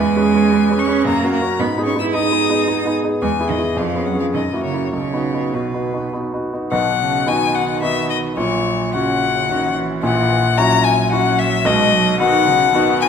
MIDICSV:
0, 0, Header, 1, 4, 480
1, 0, Start_track
1, 0, Key_signature, 5, "major"
1, 0, Tempo, 541028
1, 1422, Time_signature, 3, 2, 24, 8
1, 3347, Tempo, 589391
1, 5747, Tempo, 556586
1, 7667, Tempo, 541516
1, 11337, End_track
2, 0, Start_track
2, 0, Title_t, "Violin"
2, 0, Program_c, 0, 40
2, 0, Note_on_c, 0, 80, 78
2, 702, Note_on_c, 0, 85, 66
2, 715, Note_off_c, 0, 80, 0
2, 941, Note_off_c, 0, 85, 0
2, 947, Note_on_c, 0, 82, 69
2, 1167, Note_off_c, 0, 82, 0
2, 1173, Note_on_c, 0, 82, 70
2, 1416, Note_on_c, 0, 83, 66
2, 1430, Note_off_c, 0, 82, 0
2, 1643, Note_off_c, 0, 83, 0
2, 1649, Note_on_c, 0, 85, 69
2, 1766, Note_off_c, 0, 85, 0
2, 1771, Note_on_c, 0, 88, 61
2, 1821, Note_off_c, 0, 88, 0
2, 1893, Note_on_c, 0, 87, 73
2, 2601, Note_off_c, 0, 87, 0
2, 2862, Note_on_c, 0, 80, 60
2, 3104, Note_on_c, 0, 75, 60
2, 3117, Note_off_c, 0, 80, 0
2, 3350, Note_on_c, 0, 77, 52
2, 3362, Note_off_c, 0, 75, 0
2, 3583, Note_on_c, 0, 78, 47
2, 3595, Note_off_c, 0, 77, 0
2, 3690, Note_off_c, 0, 78, 0
2, 3695, Note_on_c, 0, 77, 52
2, 3741, Note_off_c, 0, 77, 0
2, 3811, Note_on_c, 0, 75, 48
2, 4046, Note_off_c, 0, 75, 0
2, 4049, Note_on_c, 0, 73, 45
2, 4291, Note_off_c, 0, 73, 0
2, 4298, Note_on_c, 0, 73, 50
2, 4788, Note_on_c, 0, 71, 37
2, 4801, Note_off_c, 0, 73, 0
2, 5274, Note_off_c, 0, 71, 0
2, 5747, Note_on_c, 0, 78, 82
2, 6228, Note_on_c, 0, 80, 85
2, 6241, Note_off_c, 0, 78, 0
2, 6463, Note_on_c, 0, 78, 73
2, 6476, Note_off_c, 0, 80, 0
2, 6691, Note_off_c, 0, 78, 0
2, 6696, Note_on_c, 0, 76, 79
2, 6928, Note_off_c, 0, 76, 0
2, 6935, Note_on_c, 0, 75, 78
2, 7004, Note_off_c, 0, 75, 0
2, 7173, Note_on_c, 0, 73, 81
2, 7657, Note_off_c, 0, 73, 0
2, 7666, Note_on_c, 0, 78, 85
2, 8376, Note_off_c, 0, 78, 0
2, 8631, Note_on_c, 0, 78, 85
2, 9113, Note_on_c, 0, 82, 97
2, 9127, Note_off_c, 0, 78, 0
2, 9346, Note_on_c, 0, 80, 86
2, 9359, Note_off_c, 0, 82, 0
2, 9586, Note_off_c, 0, 80, 0
2, 9592, Note_on_c, 0, 78, 89
2, 9833, Note_on_c, 0, 76, 91
2, 9846, Note_off_c, 0, 78, 0
2, 10070, Note_on_c, 0, 75, 94
2, 10083, Note_off_c, 0, 76, 0
2, 10542, Note_off_c, 0, 75, 0
2, 10547, Note_on_c, 0, 78, 107
2, 11254, Note_off_c, 0, 78, 0
2, 11273, Note_on_c, 0, 80, 90
2, 11337, Note_off_c, 0, 80, 0
2, 11337, End_track
3, 0, Start_track
3, 0, Title_t, "Grand piano"
3, 0, Program_c, 1, 0
3, 0, Control_c, 1, 64, 127
3, 0, Note_on_c, 1, 40, 53
3, 5, Control_c, 1, 64, 0
3, 126, Control_c, 1, 64, 127
3, 141, Note_off_c, 1, 40, 0
3, 141, Note_on_c, 1, 61, 48
3, 145, Note_on_c, 1, 68, 48
3, 148, Note_on_c, 1, 71, 48
3, 289, Note_off_c, 1, 61, 0
3, 291, Note_off_c, 1, 68, 0
3, 292, Note_off_c, 1, 71, 0
3, 302, Note_on_c, 1, 61, 39
3, 305, Note_on_c, 1, 68, 39
3, 310, Note_on_c, 1, 71, 47
3, 448, Note_off_c, 1, 61, 0
3, 450, Note_off_c, 1, 68, 0
3, 453, Note_off_c, 1, 71, 0
3, 463, Note_on_c, 1, 61, 42
3, 466, Note_on_c, 1, 68, 40
3, 467, Note_on_c, 1, 71, 51
3, 608, Note_off_c, 1, 61, 0
3, 610, Note_off_c, 1, 68, 0
3, 610, Note_off_c, 1, 71, 0
3, 621, Note_on_c, 1, 61, 43
3, 625, Note_on_c, 1, 68, 41
3, 629, Note_on_c, 1, 71, 43
3, 763, Note_off_c, 1, 61, 0
3, 768, Note_off_c, 1, 68, 0
3, 770, Note_off_c, 1, 71, 0
3, 776, Note_on_c, 1, 61, 48
3, 781, Note_on_c, 1, 68, 48
3, 785, Note_on_c, 1, 71, 50
3, 923, Note_off_c, 1, 61, 0
3, 925, Note_off_c, 1, 68, 0
3, 927, Note_off_c, 1, 71, 0
3, 932, Note_on_c, 1, 42, 56
3, 961, Control_c, 1, 64, 0
3, 1086, Control_c, 1, 64, 127
3, 1092, Note_off_c, 1, 42, 0
3, 1096, Note_on_c, 1, 61, 43
3, 1100, Note_on_c, 1, 66, 42
3, 1105, Note_on_c, 1, 70, 44
3, 1238, Note_off_c, 1, 61, 0
3, 1242, Note_off_c, 1, 66, 0
3, 1244, Note_off_c, 1, 70, 0
3, 1251, Note_on_c, 1, 61, 40
3, 1256, Note_on_c, 1, 66, 44
3, 1258, Note_on_c, 1, 70, 42
3, 1400, Note_off_c, 1, 61, 0
3, 1402, Note_off_c, 1, 66, 0
3, 1404, Note_off_c, 1, 70, 0
3, 1413, Note_on_c, 1, 44, 56
3, 1438, Control_c, 1, 64, 0
3, 1572, Note_off_c, 1, 44, 0
3, 1577, Note_on_c, 1, 59, 46
3, 1579, Note_on_c, 1, 63, 45
3, 1583, Note_on_c, 1, 68, 45
3, 1586, Control_c, 1, 64, 127
3, 1721, Note_off_c, 1, 59, 0
3, 1723, Note_off_c, 1, 63, 0
3, 1725, Note_off_c, 1, 68, 0
3, 1734, Note_on_c, 1, 59, 44
3, 1737, Note_on_c, 1, 63, 43
3, 1743, Note_on_c, 1, 68, 41
3, 1880, Note_off_c, 1, 59, 0
3, 1881, Note_off_c, 1, 63, 0
3, 1885, Note_off_c, 1, 68, 0
3, 1894, Note_on_c, 1, 59, 37
3, 1900, Note_on_c, 1, 63, 37
3, 1902, Note_on_c, 1, 68, 44
3, 2040, Note_off_c, 1, 59, 0
3, 2043, Note_off_c, 1, 63, 0
3, 2044, Note_off_c, 1, 68, 0
3, 2055, Note_on_c, 1, 59, 36
3, 2058, Note_on_c, 1, 63, 39
3, 2062, Note_on_c, 1, 68, 46
3, 2200, Note_off_c, 1, 59, 0
3, 2202, Note_off_c, 1, 63, 0
3, 2204, Note_off_c, 1, 68, 0
3, 2213, Note_on_c, 1, 59, 43
3, 2216, Note_on_c, 1, 63, 43
3, 2220, Note_on_c, 1, 68, 45
3, 2359, Note_off_c, 1, 59, 0
3, 2361, Note_off_c, 1, 63, 0
3, 2363, Note_off_c, 1, 68, 0
3, 2373, Note_on_c, 1, 59, 40
3, 2379, Note_on_c, 1, 63, 43
3, 2384, Note_on_c, 1, 68, 44
3, 2518, Note_off_c, 1, 59, 0
3, 2522, Note_off_c, 1, 63, 0
3, 2525, Note_off_c, 1, 68, 0
3, 2532, Note_on_c, 1, 59, 38
3, 2537, Note_on_c, 1, 63, 39
3, 2539, Note_on_c, 1, 68, 40
3, 2678, Note_off_c, 1, 59, 0
3, 2681, Note_off_c, 1, 63, 0
3, 2682, Note_off_c, 1, 68, 0
3, 2696, Note_on_c, 1, 59, 35
3, 2701, Note_on_c, 1, 63, 36
3, 2704, Note_on_c, 1, 68, 37
3, 2840, Note_off_c, 1, 59, 0
3, 2843, Note_off_c, 1, 63, 0
3, 2845, Note_off_c, 1, 68, 0
3, 2855, Note_on_c, 1, 40, 54
3, 2872, Control_c, 1, 64, 0
3, 3007, Control_c, 1, 64, 127
3, 3012, Note_off_c, 1, 40, 0
3, 3012, Note_on_c, 1, 59, 38
3, 3017, Note_on_c, 1, 64, 38
3, 3022, Note_on_c, 1, 68, 43
3, 3161, Note_off_c, 1, 59, 0
3, 3164, Note_off_c, 1, 64, 0
3, 3167, Note_off_c, 1, 68, 0
3, 3181, Note_on_c, 1, 59, 34
3, 3185, Note_on_c, 1, 64, 37
3, 3189, Note_on_c, 1, 68, 41
3, 3329, Note_off_c, 1, 59, 0
3, 3331, Note_off_c, 1, 64, 0
3, 3334, Note_off_c, 1, 68, 0
3, 3342, Note_on_c, 1, 41, 49
3, 3361, Control_c, 1, 64, 0
3, 3492, Note_off_c, 1, 41, 0
3, 3496, Note_on_c, 1, 59, 34
3, 3501, Note_on_c, 1, 61, 34
3, 3503, Note_on_c, 1, 68, 34
3, 3506, Control_c, 1, 64, 127
3, 3636, Note_off_c, 1, 59, 0
3, 3639, Note_off_c, 1, 61, 0
3, 3640, Note_off_c, 1, 68, 0
3, 3650, Note_on_c, 1, 59, 35
3, 3654, Note_on_c, 1, 61, 36
3, 3658, Note_on_c, 1, 68, 37
3, 3792, Note_off_c, 1, 59, 0
3, 3794, Note_off_c, 1, 61, 0
3, 3797, Note_off_c, 1, 68, 0
3, 3809, Note_on_c, 1, 42, 43
3, 3826, Control_c, 1, 64, 0
3, 3956, Control_c, 1, 64, 127
3, 3964, Note_off_c, 1, 42, 0
3, 3967, Note_on_c, 1, 58, 31
3, 3969, Note_on_c, 1, 64, 33
3, 3974, Note_on_c, 1, 66, 35
3, 4114, Note_off_c, 1, 58, 0
3, 4115, Note_off_c, 1, 64, 0
3, 4118, Note_off_c, 1, 66, 0
3, 4127, Note_on_c, 1, 58, 29
3, 4132, Note_on_c, 1, 64, 31
3, 4134, Note_on_c, 1, 66, 30
3, 4278, Note_off_c, 1, 58, 0
3, 4280, Note_off_c, 1, 64, 0
3, 4282, Note_off_c, 1, 66, 0
3, 4292, Note_on_c, 1, 35, 39
3, 4315, Control_c, 1, 64, 0
3, 4454, Note_off_c, 1, 35, 0
3, 4455, Note_on_c, 1, 59, 29
3, 4458, Control_c, 1, 64, 127
3, 4458, Note_on_c, 1, 63, 31
3, 4463, Note_on_c, 1, 66, 32
3, 4605, Note_off_c, 1, 59, 0
3, 4607, Note_off_c, 1, 63, 0
3, 4609, Note_off_c, 1, 66, 0
3, 4623, Note_on_c, 1, 59, 31
3, 4625, Note_on_c, 1, 63, 29
3, 4629, Note_on_c, 1, 66, 34
3, 4770, Note_off_c, 1, 59, 0
3, 4772, Note_off_c, 1, 63, 0
3, 4774, Note_off_c, 1, 66, 0
3, 4784, Note_on_c, 1, 59, 30
3, 4789, Note_on_c, 1, 63, 28
3, 4791, Note_on_c, 1, 66, 32
3, 4932, Note_off_c, 1, 59, 0
3, 4934, Note_off_c, 1, 63, 0
3, 4935, Note_off_c, 1, 66, 0
3, 4949, Note_on_c, 1, 59, 28
3, 4953, Note_on_c, 1, 63, 28
3, 4956, Note_on_c, 1, 66, 28
3, 5094, Note_off_c, 1, 59, 0
3, 5097, Note_off_c, 1, 63, 0
3, 5099, Note_off_c, 1, 66, 0
3, 5106, Note_on_c, 1, 59, 30
3, 5111, Note_on_c, 1, 63, 31
3, 5113, Note_on_c, 1, 66, 33
3, 5254, Note_off_c, 1, 59, 0
3, 5257, Note_off_c, 1, 63, 0
3, 5258, Note_off_c, 1, 66, 0
3, 5268, Note_on_c, 1, 59, 30
3, 5273, Note_on_c, 1, 63, 28
3, 5275, Note_on_c, 1, 66, 32
3, 5415, Note_off_c, 1, 59, 0
3, 5417, Note_off_c, 1, 63, 0
3, 5419, Note_off_c, 1, 66, 0
3, 5432, Note_on_c, 1, 59, 26
3, 5434, Note_on_c, 1, 63, 29
3, 5436, Note_on_c, 1, 66, 31
3, 5576, Note_off_c, 1, 59, 0
3, 5577, Note_off_c, 1, 63, 0
3, 5578, Note_off_c, 1, 66, 0
3, 5595, Note_on_c, 1, 59, 27
3, 5598, Note_on_c, 1, 63, 28
3, 5602, Note_on_c, 1, 66, 31
3, 5732, Note_off_c, 1, 59, 0
3, 5734, Note_off_c, 1, 63, 0
3, 5736, Note_off_c, 1, 66, 0
3, 5742, Note_on_c, 1, 47, 52
3, 5745, Note_on_c, 1, 35, 57
3, 5765, Control_c, 1, 64, 0
3, 5912, Control_c, 1, 64, 127
3, 6219, Note_on_c, 1, 59, 41
3, 6221, Note_on_c, 1, 63, 41
3, 6226, Note_on_c, 1, 66, 48
3, 6659, Note_off_c, 1, 59, 0
3, 6660, Note_off_c, 1, 63, 0
3, 6662, Note_off_c, 1, 66, 0
3, 6696, Note_on_c, 1, 59, 45
3, 6698, Note_on_c, 1, 63, 44
3, 6703, Note_on_c, 1, 66, 46
3, 7135, Note_off_c, 1, 47, 0
3, 7136, Note_off_c, 1, 35, 0
3, 7137, Note_off_c, 1, 59, 0
3, 7138, Note_off_c, 1, 63, 0
3, 7141, Note_off_c, 1, 66, 0
3, 7169, Note_on_c, 1, 34, 57
3, 7171, Note_on_c, 1, 46, 55
3, 7186, Control_c, 1, 64, 0
3, 7323, Control_c, 1, 64, 127
3, 7666, Note_on_c, 1, 61, 44
3, 7669, Note_on_c, 1, 66, 48
3, 8116, Note_off_c, 1, 61, 0
3, 8118, Note_off_c, 1, 66, 0
3, 8153, Note_on_c, 1, 61, 45
3, 8156, Note_on_c, 1, 66, 50
3, 8593, Note_off_c, 1, 34, 0
3, 8594, Note_off_c, 1, 46, 0
3, 8595, Note_off_c, 1, 61, 0
3, 8597, Note_off_c, 1, 66, 0
3, 8627, Note_on_c, 1, 34, 62
3, 8631, Note_on_c, 1, 46, 58
3, 8647, Control_c, 1, 64, 0
3, 8788, Control_c, 1, 64, 127
3, 9113, Note_on_c, 1, 61, 54
3, 9114, Note_on_c, 1, 64, 48
3, 9120, Note_on_c, 1, 66, 55
3, 9554, Note_off_c, 1, 61, 0
3, 9554, Note_off_c, 1, 64, 0
3, 9557, Note_off_c, 1, 66, 0
3, 9594, Note_on_c, 1, 61, 52
3, 9596, Note_on_c, 1, 64, 50
3, 9599, Note_on_c, 1, 66, 57
3, 10026, Note_off_c, 1, 34, 0
3, 10028, Note_off_c, 1, 46, 0
3, 10031, Note_off_c, 1, 61, 0
3, 10032, Note_off_c, 1, 64, 0
3, 10033, Note_off_c, 1, 66, 0
3, 10066, Note_on_c, 1, 35, 74
3, 10067, Note_on_c, 1, 47, 63
3, 10078, Control_c, 1, 64, 0
3, 10227, Control_c, 1, 64, 127
3, 10550, Note_on_c, 1, 59, 55
3, 10553, Note_on_c, 1, 63, 53
3, 10556, Note_on_c, 1, 66, 56
3, 10992, Note_off_c, 1, 59, 0
3, 10994, Note_off_c, 1, 63, 0
3, 10995, Note_off_c, 1, 66, 0
3, 11030, Note_on_c, 1, 59, 60
3, 11036, Note_on_c, 1, 63, 57
3, 11038, Note_on_c, 1, 66, 65
3, 11337, Note_off_c, 1, 35, 0
3, 11337, Note_off_c, 1, 47, 0
3, 11337, Note_off_c, 1, 59, 0
3, 11337, Note_off_c, 1, 63, 0
3, 11337, Note_off_c, 1, 66, 0
3, 11337, End_track
4, 0, Start_track
4, 0, Title_t, "Cello"
4, 0, Program_c, 2, 42
4, 0, Note_on_c, 2, 56, 89
4, 686, Note_off_c, 2, 56, 0
4, 691, Note_on_c, 2, 61, 82
4, 941, Note_on_c, 2, 58, 80
4, 954, Note_off_c, 2, 61, 0
4, 1169, Note_off_c, 2, 58, 0
4, 1174, Note_on_c, 2, 58, 66
4, 1245, Note_off_c, 2, 58, 0
4, 1414, Note_on_c, 2, 59, 78
4, 1485, Note_off_c, 2, 59, 0
4, 1651, Note_on_c, 2, 61, 71
4, 1700, Note_off_c, 2, 61, 0
4, 1781, Note_on_c, 2, 64, 73
4, 1898, Note_on_c, 2, 63, 80
4, 1911, Note_off_c, 2, 64, 0
4, 2617, Note_off_c, 2, 63, 0
4, 2856, Note_on_c, 2, 56, 75
4, 2927, Note_off_c, 2, 56, 0
4, 3097, Note_on_c, 2, 51, 64
4, 3168, Note_off_c, 2, 51, 0
4, 3350, Note_on_c, 2, 53, 57
4, 3578, Note_on_c, 2, 54, 55
4, 3590, Note_off_c, 2, 53, 0
4, 3691, Note_off_c, 2, 54, 0
4, 3696, Note_on_c, 2, 53, 53
4, 3742, Note_off_c, 2, 53, 0
4, 3811, Note_on_c, 2, 51, 53
4, 3876, Note_off_c, 2, 51, 0
4, 4055, Note_on_c, 2, 49, 50
4, 4294, Note_off_c, 2, 49, 0
4, 4304, Note_on_c, 2, 49, 60
4, 4787, Note_on_c, 2, 47, 45
4, 4799, Note_off_c, 2, 49, 0
4, 5273, Note_off_c, 2, 47, 0
4, 5752, Note_on_c, 2, 51, 61
4, 5821, Note_off_c, 2, 51, 0
4, 5985, Note_on_c, 2, 49, 62
4, 6232, Note_on_c, 2, 51, 55
4, 6245, Note_off_c, 2, 49, 0
4, 7165, Note_off_c, 2, 51, 0
4, 7170, Note_on_c, 2, 54, 56
4, 7666, Note_on_c, 2, 49, 58
4, 7679, Note_off_c, 2, 54, 0
4, 8153, Note_on_c, 2, 51, 67
4, 8166, Note_off_c, 2, 49, 0
4, 8380, Note_off_c, 2, 51, 0
4, 8386, Note_on_c, 2, 52, 60
4, 9093, Note_off_c, 2, 52, 0
4, 9108, Note_on_c, 2, 54, 61
4, 10061, Note_on_c, 2, 56, 74
4, 10075, Note_off_c, 2, 54, 0
4, 10305, Note_on_c, 2, 54, 74
4, 10318, Note_off_c, 2, 56, 0
4, 10544, Note_off_c, 2, 54, 0
4, 10552, Note_on_c, 2, 51, 69
4, 10791, Note_on_c, 2, 49, 76
4, 10804, Note_off_c, 2, 51, 0
4, 11024, Note_off_c, 2, 49, 0
4, 11029, Note_on_c, 2, 51, 69
4, 11337, Note_off_c, 2, 51, 0
4, 11337, End_track
0, 0, End_of_file